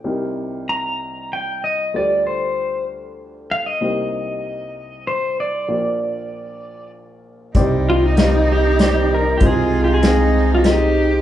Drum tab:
HH |------|------|------|------|
SD |------|------|------|------|
BD |------|------|------|------|

HH |x-x-x-|x-x-x-|
SD |--o-o-|--o-o-|
BD |o-----|o-----|